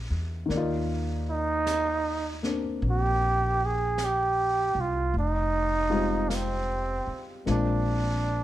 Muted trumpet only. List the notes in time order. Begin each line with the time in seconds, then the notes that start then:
1.30 D#4
2.91 G4
3.66 G#4
4.05 G4
4.81 F4
5.19 D#4
6.30 A#3
6.35 C4
7.50 D4